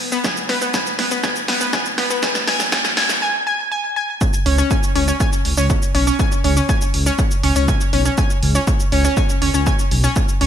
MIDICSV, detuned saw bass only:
0, 0, Header, 1, 2, 480
1, 0, Start_track
1, 0, Tempo, 495868
1, 237, Time_signature, 4, 2, 24, 8
1, 10131, End_track
2, 0, Start_track
2, 0, Title_t, "Detuned saw bass"
2, 0, Program_c, 0, 39
2, 4316, Note_on_c, 0, 37, 101
2, 4472, Note_off_c, 0, 37, 0
2, 4797, Note_on_c, 0, 37, 90
2, 4952, Note_off_c, 0, 37, 0
2, 5276, Note_on_c, 0, 37, 87
2, 5354, Note_off_c, 0, 37, 0
2, 5396, Note_on_c, 0, 37, 78
2, 5552, Note_off_c, 0, 37, 0
2, 5756, Note_on_c, 0, 35, 95
2, 5912, Note_off_c, 0, 35, 0
2, 6236, Note_on_c, 0, 37, 99
2, 6392, Note_off_c, 0, 37, 0
2, 6717, Note_on_c, 0, 37, 89
2, 6873, Note_off_c, 0, 37, 0
2, 7197, Note_on_c, 0, 37, 86
2, 7275, Note_off_c, 0, 37, 0
2, 7317, Note_on_c, 0, 37, 81
2, 7472, Note_off_c, 0, 37, 0
2, 7677, Note_on_c, 0, 35, 99
2, 7832, Note_off_c, 0, 35, 0
2, 8157, Note_on_c, 0, 37, 100
2, 8312, Note_off_c, 0, 37, 0
2, 8637, Note_on_c, 0, 37, 89
2, 8792, Note_off_c, 0, 37, 0
2, 9116, Note_on_c, 0, 37, 90
2, 9194, Note_off_c, 0, 37, 0
2, 9237, Note_on_c, 0, 37, 79
2, 9392, Note_off_c, 0, 37, 0
2, 9596, Note_on_c, 0, 35, 96
2, 9752, Note_off_c, 0, 35, 0
2, 10077, Note_on_c, 0, 37, 102
2, 10131, Note_off_c, 0, 37, 0
2, 10131, End_track
0, 0, End_of_file